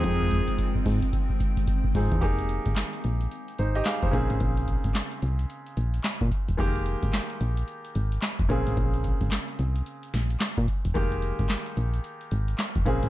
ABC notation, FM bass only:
X:1
M:4/4
L:1/16
Q:"Swing 16ths" 1/4=110
K:Fm
V:1 name="FM bass" clef=bass
F,,3 z2 A,, A,, z6 z A,, =E,, | F,,,3 A,,, z2 B,,,2 z2 A,,,2 z F,,, B,,, =A,,, | B,,,3 A,,, z2 C,,2 z2 B,,,2 z B,, z =E,,, | F,,,3 A,,, z2 B,,,2 z2 A,,,2 z F,,, B,,, =A,,, |
B,,,3 A,,, z2 C,,2 z2 B,,,2 z B,, z =E,,, | F,,,3 A,,, z2 B,,,2 z2 A,,,2 z F,,, B,,, =A,,, |]